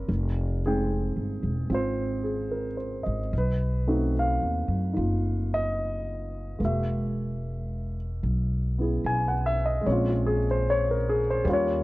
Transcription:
0.00 0.10 A#3 soft
0.00 0.61 A#4 medium
0.08 1.12 F1 medium
0.66 3.33 G#3 soft
0.66 1.68 C4 soft
0.66 3.34 D#4 soft
0.66 1.67 G#4 medium
0.66 3.34 G5 soft
1.16 1.41 G1 soft
1.43 1.68 E1 soft
1.70 3.02 G#1 medium
1.70 3.32 C4 soft
1.70 3.33 F4 soft
1.74 2.76 C5 medium
2.24 2.66 G#4 soft
2.51 3.03 A#4 soft
2.77 3.20 C5 soft
3.03 3.30 G#1 soft
3.03 3.46 D#5 soft
3.33 4.37 B1 medium
3.38 4.12 B4 medium
3.88 6.59 A3 soft
3.88 6.59 C4 soft
3.88 4.92 D#4 soft
3.88 6.60 F#4 soft
4.19 5.50 F5 medium
4.42 4.66 D#2 soft
4.68 4.93 F#2 soft
4.93 6.56 F#1 medium
4.93 6.58 D#4 soft
4.97 6.60 F4 soft
5.54 6.57 D#5 medium
6.59 8.18 E1 medium
6.59 9.80 G#3 soft
6.59 9.85 A#3 soft
6.64 9.87 F#4 soft
6.64 7.95 E5 medium
8.23 9.00 B1 medium
8.78 9.85 B3 soft
8.78 9.86 E4 soft
8.78 9.87 G#4 soft
9.04 9.81 B1 medium
9.04 9.32 G#5 medium
9.28 9.56 F#5 medium
9.46 9.65 E5 medium
9.66 9.81 D#5 medium
9.81 11.44 G#3 soft
9.85 11.43 A#1 medium
9.85 11.46 C4 soft
9.85 11.46 C#4 soft
9.85 10.12 C#5 medium
9.92 10.08 F4 soft
10.09 10.38 F4 soft
10.26 10.45 G#4 medium
10.51 10.64 C5 medium
10.70 10.94 C#5 medium
10.91 11.18 A#4 medium
11.09 11.27 G#4 medium
11.30 11.44 C5 medium
11.44 11.84 D#2 medium
11.44 11.84 G3 soft
11.44 11.84 A#3 soft
11.44 11.84 C#4 soft
11.50 11.84 F4 medium
11.50 11.84 C#5 medium

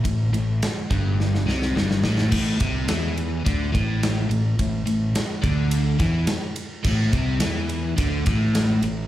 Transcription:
0.04 0.32 A1 medium
0.04 0.28 A2 medium
0.04 kick medium
0.04 ride medium
0.32 0.59 A1 medium
0.32 0.56 A2 medium
0.32 ride medium
0.62 snare loud
0.62 ride loud
0.90 1.43 G1 medium
0.90 1.46 G2 loud
0.90 kick medium
0.90 ride medium
1.20 snare medium
1.35 snare medium
1.46 1.73 C2 loud
1.46 1.74 C3 medium
1.46 snare medium
1.62 snare medium
1.74 2.01 G1 medium
1.74 2.03 G2 medium
1.74 snare medium
1.91 snare medium
2.02 2.29 A1 medium
2.02 2.30 A2 loud
2.02 snare loud
2.18 snare medium
2.31 2.59 A1 loud
2.31 2.59 A2 loud
2.31 kick loud
2.31 crash loud
2.60 2.87 C2 medium
2.60 2.88 C3 medium
2.60 kick loud
2.60 ride medium
2.88 3.42 E2 loud
2.88 3.44 E3 loud
2.88 snare loud
2.88 ride loud
3.17 ride medium
3.45 3.72 D2 medium
3.45 3.72 D3 medium
3.45 kick loud
3.45 ride medium
3.72 4.27 A1 loud
3.72 4.28 A2 loud
3.72 kick loud
3.72 ride medium
4.03 snare loud
4.03 ride medium
4.29 4.57 A1 medium
4.29 4.53 A2 medium
4.29 ride medium
4.59 4.85 A1 medium
4.59 4.82 A2 medium
4.59 kick medium
4.59 ride medium
4.86 5.13 A1 medium
4.86 5.09 A2 medium
4.86 ride medium
5.15 snare loud
5.15 ride loud
5.42 5.96 D2 medium
5.42 5.98 D3 loud
5.42 kick loud
5.42 ride medium
5.71 ride loud
5.99 6.26 E2 loud
5.99 6.27 E3 loud
5.99 kick loud
5.99 ride medium
6.27 muted overdriven electric guitar stroke medium
6.27 muted fingered electric bass stroke soft
6.27 snare loud
6.27 ride loud
6.56 ride medium
6.84 7.11 A1 loud
6.84 7.12 A2 loud
6.84 kick loud
6.84 crash medium
7.13 7.39 C2 loud
7.13 7.40 C3 medium
7.13 kick loud
7.13 ride medium
7.40 7.94 E2 loud
7.40 7.96 E3 loud
7.40 snare loud
7.40 ride loud
7.69 ride medium
7.97 8.25 D2 medium
7.97 8.25 D3 loud
7.97 kick loud
7.97 ride loud
8.26 8.80 A1 medium
8.26 8.82 A2 loud
8.26 kick loud
8.26 ride medium
8.55 snare loud
8.55 ride loud
8.82 9.07 A1 medium
8.82 9.07 A2 medium
8.82 ride medium

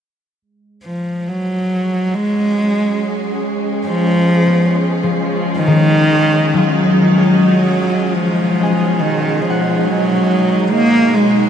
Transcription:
0.42 11.49 G#3 medium
0.73 9.71 C#5 medium
0.84 1.29 F3 medium
1.00 7.28 G#3 medium
1.28 2.15 F#3 medium
1.37 9.16 G#4 medium
1.59 9.17 C#4 medium
2.14 3.42 G#3 medium
3.84 5.09 F3 loud
4.47 7.57 B3 medium
5.03 5.73 F3 medium
5.56 6.81 D#3 loud
5.67 7.33 D#3 medium
6.54 7.33 F#3 medium
6.54 9.09 F4 medium
7.18 9.09 C#5 medium
7.28 8.15 F#3 medium
7.54 11.49 B2 medium
7.92 11.49 D#4 medium
8.06 11.49 D#5 medium
8.14 9.02 F3 medium
8.63 10.13 G#5 medium
9.01 9.43 D#3 medium
9.42 9.86 F3 medium
9.50 11.25 F#5 medium
9.85 10.72 F#3 medium
10.71 11.16 A#3 loud
11.14 11.49 G#3 medium

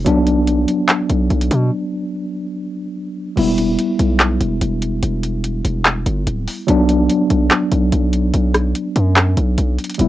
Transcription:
0.05 0.66 B1 loud
0.05 3.32 F#3 medium
0.05 3.33 B3 medium
0.05 3.34 D4 medium
0.05 closed hi-hat medium
0.27 closed hi-hat medium
0.47 closed hi-hat medium
0.68 closed hi-hat medium
0.89 clap loud
0.89 closed hi-hat medium
1.10 1.29 B1 loud
1.10 closed hi-hat medium
1.30 1.50 B1 loud
1.30 closed hi-hat medium
1.41 closed hi-hat medium
1.51 1.71 B2 loud
1.51 closed hi-hat medium
3.36 3.77 E1 loud
3.36 6.64 G3 medium
3.36 6.64 B3 medium
3.36 6.65 E4 medium
3.36 closed hi-hat medium
3.36 crash loud
3.58 closed hi-hat medium
3.79 closed hi-hat medium
3.99 4.39 B1 loud
3.99 closed hi-hat medium
4.20 cross-stick medium
4.20 clap loud
4.20 closed hi-hat medium
4.41 4.60 E1 loud
4.41 closed hi-hat medium
4.61 5.01 E1 loud
4.61 closed hi-hat medium
4.82 closed hi-hat medium
5.03 5.62 E1 loud
5.03 closed hi-hat medium
5.23 closed hi-hat medium
5.44 closed hi-hat medium
5.65 6.04 E1 loud
5.65 closed hi-hat medium
5.85 cross-stick medium
5.85 clap loud
5.85 closed hi-hat medium
6.06 6.26 G1 loud
6.06 closed hi-hat medium
6.27 6.47 D1 loud
6.27 closed hi-hat medium
6.48 open hi-hat medium
6.67 7.08 B1 loud
6.67 9.95 F#3 medium
6.67 9.95 B3 medium
6.67 9.96 D4 medium
6.67 closed hi-hat medium
6.89 closed hi-hat medium
7.10 closed hi-hat medium
7.30 7.50 B1 loud
7.30 closed hi-hat medium
7.51 cross-stick medium
7.51 clap loud
7.51 closed hi-hat medium
7.72 7.92 B1 loud
7.72 closed hi-hat medium
7.92 8.32 B1 loud
7.92 closed hi-hat medium
8.13 closed hi-hat medium
8.34 8.73 B1 loud
8.34 closed hi-hat medium
8.54 cross-stick loud
8.54 closed hi-hat medium
8.75 closed hi-hat medium
8.96 9.36 F#2 loud
8.96 closed hi-hat medium
9.16 cross-stick medium
9.16 clap loud
9.16 closed hi-hat medium
9.37 9.57 B1 loud
9.37 closed hi-hat medium
9.58 9.78 B1 loud
9.58 closed hi-hat medium
9.79 closed hi-hat medium
9.84 closed hi-hat medium
9.90 closed hi-hat medium
9.94 10.08 G3 medium
9.94 closed hi-hat medium
9.99 10.08 E1 loud
9.99 10.08 B3 medium
9.99 10.08 E4 medium
9.99 closed hi-hat medium

